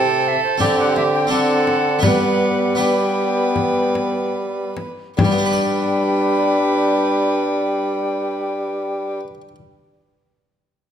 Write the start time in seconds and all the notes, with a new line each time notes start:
Already playing: C3 C4 E4 A4 G5
0.28 E5
0.44 C5
0.58 D3 C4 D4 G4 D5, frame drum
0.62 D3
0.80 F#5
0.96 E5, frame drum
1.15 G5
1.27 D3 C4 D4 A4
1.31 D3 F#5
1.67 frame drum
1.99 G3 B3 D4 B4, frame drum
2.04 G3 B4 F#5
2.75 B3 D4 B4 G5
3.56 frame drum
3.95 frame drum
4.77 frame drum
5.17 G2 G3 D4 B4 G5, frame drum
5.25 G3
5.31 B3
5.38 D4
5.45 B4
5.53 D5